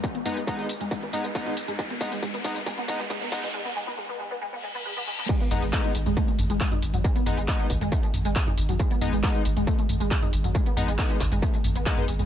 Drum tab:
CC |----------------|----------------|----------------|x---------------|
HH |xxoxxxoxxxoxxxox|xxoxxxoxxxoxxxox|----------------|xxoxxxoxxxoxxxox|
TB |x-xxxxxxx-xxx-xx|x-xxxxxxx-xxx-xx|----------------|xxxxxxxxxxxxxxxx|
CP |----------------|----------------|----------------|----x-------x---|
T2 |--o----o--o--o-o|--o----o--o--o-o|----------------|--o----o--o--o-o|
BD |o---o---o---o---|o-o-o-o-o-o-o-o-|----------------|o---o---o---o---|

CC |----------------|----------------|----------------|
HH |xxoxxxoxxxoxxxox|xxoxxxoxxxoxxxox|xxoxxxoxxxoxxxox|
TB |xxxxxxxxxxxxxxxx|xxxxxxxxxxxxxxxx|xxxxxxxxxxxxxxxx|
CP |----x-------x---|----x-------x---|----x-x-----x---|
T2 |--o----o--o--o-o|--o----o--o--o-o|--o----o--o--o-o|
BD |o---o-o-o---o---|o---o---o---o---|o---o-o-o---o---|